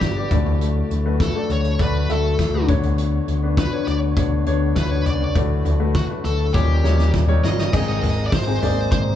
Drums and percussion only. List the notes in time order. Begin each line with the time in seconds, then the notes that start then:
0.01 kick, snare, closed hi-hat
0.31 kick, closed hi-hat, floor tom
0.46 floor tom
0.61 closed hi-hat
0.91 closed hi-hat
1.20 kick, snare, closed hi-hat
1.50 closed hi-hat
1.64 closed hi-hat
1.79 kick, closed hi-hat
2.09 closed hi-hat
2.39 kick, snare, closed hi-hat
2.69 kick, closed hi-hat, floor tom
2.83 closed hi-hat, floor tom
2.98 closed hi-hat
3.28 closed hi-hat
3.57 kick, snare, closed hi-hat
3.87 closed hi-hat
4.17 kick, closed hi-hat
4.46 closed hi-hat
4.76 kick, snare, closed hi-hat
5.06 closed hi-hat, floor tom
5.20 floor tom
5.35 kick, closed hi-hat
5.65 closed hi-hat, floor tom
5.95 kick, snare, closed hi-hat
6.25 closed hi-hat
6.54 kick, snare
6.84 snare
6.99 snare
7.14 kick, snare
7.44 snare
7.59 snare
7.73 kick, crash
8.03 floor tom, hi-hat pedal, open hi-hat
8.32 kick, snare, hi-hat pedal, open hi-hat
8.62 floor tom, hi-hat pedal, open hi-hat
8.92 kick, hi-hat pedal, open hi-hat